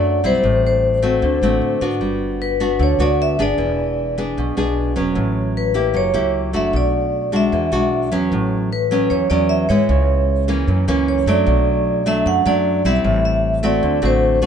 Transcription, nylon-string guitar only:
Already playing: F#2 A3 D4 F#4
0.24 G3 C4 E4
0.44 A2
1.02 A3 C4 F#4
1.22 D3
1.43 A3 C4 F#4
1.81 B3 D4 F#4
2.01 G3
2.60 B3 D4 F#4
2.80 D3
3.00 B3 D4 F#4
3.39 B3 D4 G#4
3.58 E3
4.18 B3 D4 G#4
4.38 B2
4.57 B3 D4 G#4
4.96 F#3 B3 C#4
5.15 A2
5.74 A#3 E4 G4
5.94 F#3
6.14 A#3 E4 G4
6.53 A3 D4 F#4
6.73 B2
7.32 G#3 D4 F#4
7.53 E3
7.72 G#3 D4 F#4
8.12 F#3 B3 C#4
8.33 A2
8.91 F#3 B3 C#4
9.11 E3
9.30 F#3 B3 C#4
9.69 G#3 B3 E4
9.89 C#3
10.48 E3 A#3 C#4
10.68 F#2
10.88 E3 A#3 C#4
11.27 F#3 A3 D4
11.46 B2
12.06 F#3 A3 D4
12.26 F#2
12.46 F#3 A3 D4
12.85 G3 C4 E4
13.04 A2
13.63 A3 C4 F#4
13.83 D3
14.02 A3 C4 F#4
14.42 B3 D4 F#4

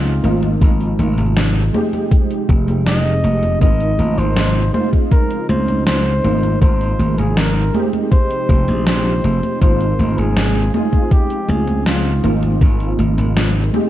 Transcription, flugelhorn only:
Already playing: F4
2.87 D#5
3.62 D#5
4.18 C5
4.74 C5
5.12 A#4
5.49 C5
5.87 C5
6.62 C5
7.18 G#4
7.37 A#4
8.12 C5
8.88 C5
9.62 C5
10.19 G#4
10.75 G#4
11.12 G4
11.49 G#4
11.87 F4

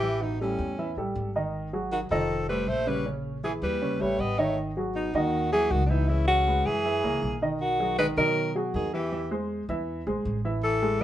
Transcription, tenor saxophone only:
Already playing: E3
0.22 B2
0.41 A2
1.92 D#3
2.11 F3
2.49 G3
2.68 A3
2.88 G3
3.44 E3
3.63 G3
4.00 A3
4.19 B3
4.38 A3
4.95 B2
5.14 D#3
5.52 E3
5.71 D#3
5.86 A#2
5.91 B2
6.09 C#3
6.28 C#3
6.66 E3
7.61 D#3
7.99 G#3
8.18 F#3
8.75 D#3
8.94 E3
10.64 E3

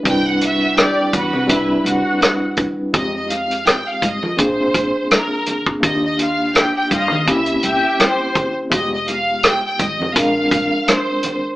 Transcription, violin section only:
0.09 G5
0.28 F#5
0.45 E5
0.81 D5
1.17 B4
2.96 D#5
3.15 D#5
3.30 F5
3.67 G5
3.89 F5
4.05 D#5
4.40 C5
5.13 A#4
5.85 D#5
6.05 D#5
6.21 F5
6.57 G5
6.76 G5
6.94 D#5
7.31 E5
8.04 C5
8.75 D#5
8.94 D#5
9.10 F5
9.46 G5
9.66 G5
9.83 D#5
10.20 F5
10.90 C5

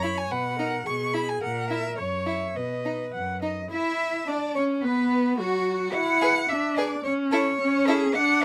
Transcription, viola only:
Already playing: C#5
0.31 B4
0.59 A#4
0.87 G#4
1.42 A#4
1.98 C#5
2.26 E5
2.56 D#5
3.14 F#5
3.43 D#5
3.71 E4
4.28 D4
4.55 C#4
4.84 B3
5.40 F#3
5.94 E4
6.50 D4
7.04 C#4
7.61 C#4
8.16 D4

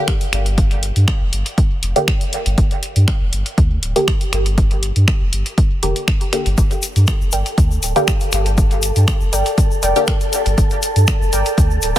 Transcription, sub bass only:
0.33 G1
0.96 G2
1.21 F1
1.33 G1
1.83 F1
2.46 G1
2.58 G1
2.96 G2
3.21 F1
3.33 G1
3.58 D2
3.83 D1
4.33 G1
4.96 G2
5.21 F1
5.33 G1
5.83 F1
6.46 G1
6.58 G1
6.96 G2
7.21 F1
7.33 G1
7.58 D2
7.83 D1
8.33 G1
8.96 G2
9.21 F1
9.33 G1
9.83 F1
10.46 G1
10.58 G1
10.96 G2
11.21 F1
11.33 G1
11.58 D2
11.83 D1

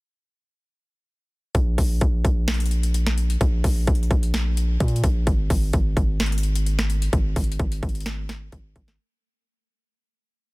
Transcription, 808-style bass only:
1.55 A#1
1.78 A#1
2.01 A#1
2.25 A#1
3.41 A#1
3.64 A#1
3.87 A#1
4.11 A#1
4.80 A#2
5.04 A#1
5.27 G#1
5.50 G#1
5.74 G#1
5.97 G#1
7.13 G#1
7.36 G#1
7.60 G#1
7.83 G#1
8.52 G#1
8.76 G#1

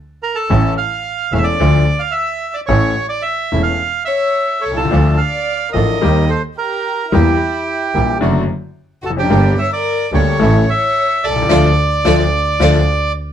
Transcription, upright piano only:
0.50 A1 A2 E3 A3 C#4 A4
1.33 E1 E2 E3 A3 C#4 A4
1.60 D2 D3 F3 A3 D4 A4
2.68 A1 A2 E3 A3 C#4 A4
3.52 E1 E2 E3 A3 C#4 A4
4.71 B1
4.77 C2
4.85 C#2
4.91 D2 D3 F3 A3 D4 A4
5.74 A1 A2 F3 A3 D4 A4
6.01 D#2 D#3 G3 A#3 G4
7.12 E2 E3 G3 A#3 G4
7.95 A#1 A#2 E3 G3 A#3 G4
8.21 F#2 D3 F#3 A3 F#4
9.10 E2
9.17 F2
9.24 F#2
9.30 G1 G2 D3 G3 A#3 G4
10.13 D2 D3 G3 A#3 G4
10.39 A1 A2 E3 A3 C#4 A4
11.29 B1
11.36 C2
11.42 C#2
11.49 D3 F3 A3
12.04 D3 F3 A3
12.60 D3 F3 A3

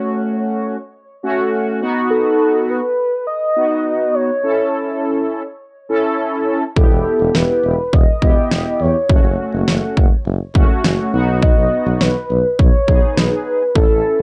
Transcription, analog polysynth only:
Already playing: A3 C#4 F#4
1.23 A3 C#4 F#4
1.81 B3 D#4 F#4
3.56 B3 D#4 F#4
4.43 C#4 E4 A4
5.89 C#4 E4 A4
6.76 B3 E4 G4
8.22 B3 E4 G4
9.10 A3 C#4 F#4
10.55 A3 C#4 F#4
11.13 B3 D#4 F#4
12.88 B3 D#4 G#4
13.76 C#4 E4 A4

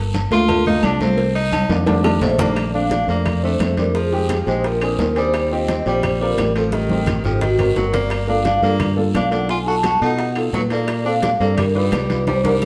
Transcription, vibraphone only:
2.22 C5
2.40 D5
2.74 F5
2.91 F5
3.09 D5
3.43 C5
3.79 A#4
3.95 G#4
4.47 C5
4.66 A#4
5.00 A#4
5.16 C5
5.70 D#5
5.86 C5
6.22 A#4
6.57 A4
6.74 G4
7.26 A4
7.43 F#4
7.76 A#4
7.94 D5
8.28 F5
8.46 F5
8.64 D5
9.15 F5
9.49 G#5
9.66 A5
9.85 A5
10.03 F#5
10.54 B4
10.72 D5
11.07 F5
11.24 F5
11.41 D5
11.58 A#4
12.28 C5
12.45 A#4

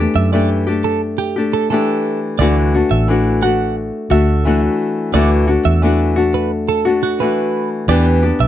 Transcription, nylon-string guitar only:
Already playing: G4
0.00 A3 D4
0.32 E3 A3 D4 G4
0.67 A3 D4 G4
1.36 A3 D4 G4
1.71 E3 A3 D4 G4
2.39 D3 E3 A3 D4 F#4
2.74 A3 D4 F#4
3.08 E3 A3 D4 F#4
3.42 A3 D4 F#4
4.10 A3 D4 F#4
4.45 E3 A3 D4 F#4
5.13 D3 E3 A3 D4 F#4
5.47 A3 D4 F#4
5.82 E3 A3 D4 F#4
6.16 A3 D4 F#4
6.85 A3 D4 F#4
7.19 E3 A3 D4 F#4
7.88 E3 B3 D4 G4
8.23 B3 D4 G4

